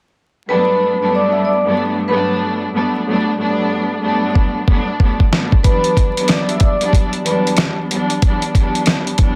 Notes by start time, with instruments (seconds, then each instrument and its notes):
0.48 string section G2 F#3 A3 B3 D4, vibraphone B4 B5
0.99 string section G2 F#3 A3 B3 D4
1.15 vibraphone D5 D6
1.32 vibraphone E5 E6
1.45 vibraphone D5 D6
1.64 string section G2 F#3 A3 B3 D4
2.07 string section G2 F#3 A3 B3 D4, vibraphone B4 B5
2.73 string section G2 F#3 A3 B3 D4
3.05 string section G2 F#3 A3 B3 D4
3.36 string section G2 F#3 A3 B3 D4
4.01 string section G2 F#3 A3 B3 D4
4.35 kick
4.67 string section G2 F#3 A3 B3 D4, kick
4.99 string section G2 F#3 A3 B3 D4, kick
5.20 kick
5.29 string section G2 F#3 A3 B3 D4, snare
5.52 kick
5.63 string section E2 F#3 G3 B3 D4, vibraphone B4 B5, kick, closed hi-hat
5.84 closed hi-hat
5.97 kick, closed hi-hat
6.15 string section E2 F#3 G3 B3 D4, closed hi-hat
6.28 vibraphone D5 D6, cross-stick, snare, closed hi-hat
6.49 vibraphone E5 E6, closed hi-hat
6.60 vibraphone D5 D6, kick, closed hi-hat
6.80 string section E2 F#3 G3 B3 D4, closed hi-hat
6.93 kick, closed hi-hat
7.13 closed hi-hat
7.23 string section E2 F#3 G3 B3 D4, vibraphone B4 B5, closed hi-hat
7.47 closed hi-hat
7.57 cross-stick, snare, closed hi-hat
7.90 string section E2 F#3 G3 B3 D4, closed hi-hat
8.10 closed hi-hat
8.20 string section E2 F#3 G3 B3 D4, kick, closed hi-hat
8.42 closed hi-hat
8.55 string section E2 F#3 G3 B3 D4, kick, closed hi-hat
8.75 closed hi-hat
8.86 cross-stick, snare, closed hi-hat
9.07 closed hi-hat
9.18 string section E2 F#3 G3 B3 D4, kick, closed hi-hat